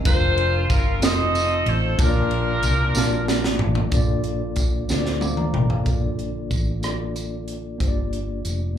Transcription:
0.04 F1 D4 F4 A#4 C5, kick, ride, tambourine
0.38 ride
0.70 G1 A#4, kick, ride, tambourine
1.00 F1 C4 D#4 F4 A4 C5 D#5, snare, ride, tambourine
1.35 ride, tambourine
1.66 A1 C5, ride
1.98 A#1 A#2 A#3 D4 F4 A#4 C#5 A5, kick, ride, tambourine
2.07 D5
2.31 ride
2.63 C2, ride, tambourine
2.95 A#1 A#3 D4 F4 D5 A5, snare, tambourine
3.28 snare, tambourine
3.44 snare
3.59 A1, floor tom
3.75 floor tom
3.91 A#1 A#2 A#3 D4 F4 A4 D5, kick, closed hi-hat, tambourine
4.24 closed hi-hat
4.56 kick, closed hi-hat, tambourine
4.88 D2 A#3 D4 F4 A4 C5, snare, tambourine
4.98 D5
5.06 snare
5.21 F5 D6, high tom, tambourine
5.37 D5 A#5, mid tom
5.54 A1 A#4 G5, mid tom
5.70 A4 F5, floor tom
5.84 A#1 D3 A#3 D4 F4 A4 C#5, kick, closed hi-hat, tambourine
5.94 D5
6.19 closed hi-hat
6.51 A1, kick, closed hi-hat, tambourine
6.81 A#3 D4 F4 A4 D5, cross-stick, closed hi-hat, tambourine
7.16 closed hi-hat, tambourine
7.48 closed hi-hat
7.78 G1 G2 A#3 D4 F4 G4 C5, kick, closed hi-hat, tambourine
7.88 D5
8.13 closed hi-hat
8.45 F1, closed hi-hat, tambourine

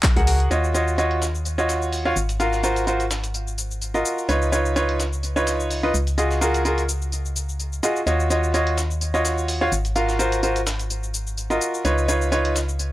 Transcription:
0.03 kick, snare, clap, closed hi-hat, tambourine
0.16 C#2 F#4 G#4 A#4 F#5, closed hi-hat
0.27 open hi-hat, tambourine
0.40 closed hi-hat
0.51 D#2 F4 F#4 C#5 D#5, tambourine, shaker
0.64 shaker
0.74 F4 F#4 C#5 D#5, tambourine, shaker
0.88 shaker
0.98 F4 F#4 C#5 D#5, tambourine, shaker
1.11 closed hi-hat
1.22 snare, tambourine, shaker
1.35 shaker
1.45 tambourine, shaker
1.58 F4 F#4 C#5 D#5, shaker
1.69 snare, tambourine, shaker
1.82 shaker
1.93 open hi-hat, shaker
2.05 F4 F#4 C#5 F5
2.16 G#1, tambourine, shaker
2.29 closed hi-hat, shaker
2.40 F4 F#4 A#4 F5, tambourine, shaker
2.53 snare, shaker
2.63 F4 F#4 A#4 C5, tambourine, shaker
2.76 closed hi-hat, shaker
2.87 F4 F#4 A#4 C5, tambourine, shaker
3.00 closed hi-hat, shaker
3.11 snare, tambourine, shaker
3.24 closed hi-hat, shaker
3.34 tambourine, shaker
3.48 shaker
3.58 tambourine, shaker
3.71 shaker
3.82 tambourine, shaker
3.94 F4 F#4 A#4 D#5, shaker
4.05 tambourine, shaker
4.18 shaker
4.29 C#2 D#4 F4 B4 C#5, tambourine, shaker
4.42 shaker
4.52 D#4 F4 B4 C#5, tambourine, shaker
4.66 shaker
4.76 D#4 F4 B4 C#5, tambourine, shaker
4.89 closed hi-hat
5.00 snare, tambourine, shaker
5.13 shaker
5.23 tambourine, shaker
5.36 D#4 F4 B4 C#5, shaker
5.47 snare, tambourine, shaker
5.60 shaker
5.71 open hi-hat, shaker
5.83 D#4 F4 B4 D#5
5.94 C#2, tambourine, shaker
6.07 closed hi-hat, shaker
6.18 F4 F#4 G#4 D#5, tambourine, shaker
6.31 snare, shaker
6.41 F4 F#4 G#4 A#4, tambourine, shaker
6.54 closed hi-hat, shaker
6.65 F4 F#4 G#4 A#4, tambourine, shaker
6.78 closed hi-hat, shaker
6.89 tambourine, shaker
7.02 shaker
7.12 tambourine, shaker
7.26 shaker
7.36 tambourine, shaker
7.49 shaker
7.59 tambourine, shaker
7.73 shaker
7.83 F4 F#4 G#4 D#5, tambourine, shaker
7.96 shaker
8.07 D#2 F4 F#4 C#5 D#5, tambourine, shaker
8.20 shaker
8.30 F4 F#4 C#5 D#5, tambourine, shaker
8.44 shaker
8.54 F4 F#4 C#5 D#5, tambourine, shaker
8.67 closed hi-hat
8.78 snare, tambourine, shaker
8.91 shaker
9.01 tambourine, shaker
9.14 F4 F#4 C#5 D#5, shaker
9.25 snare, tambourine, shaker
9.38 shaker
9.48 open hi-hat, shaker
9.61 F4 F#4 C#5 F5
9.72 G#1, tambourine, shaker
9.85 closed hi-hat, shaker
9.96 F4 F#4 A#4 F5, tambourine, shaker
10.09 snare, shaker
10.19 F4 F#4 A#4 C5, tambourine, shaker
10.32 closed hi-hat, shaker
10.43 F4 F#4 A#4 C5, tambourine, shaker
10.56 closed hi-hat, shaker
10.67 snare, tambourine, shaker
10.79 closed hi-hat, shaker
10.90 tambourine, shaker
11.03 shaker
11.14 tambourine, shaker
11.27 shaker
11.37 tambourine, shaker
11.50 F4 F#4 A#4 D#5, shaker
11.61 tambourine, shaker
11.74 shaker
11.85 C#2 D#4 F4 B4 C#5, tambourine, shaker
11.98 shaker
12.08 D#4 F4 B4 C#5, tambourine, shaker
12.22 shaker
12.32 D#4 F4 B4 C#5, tambourine, shaker
12.45 closed hi-hat
12.56 snare, tambourine, shaker
12.69 shaker
12.79 tambourine, shaker

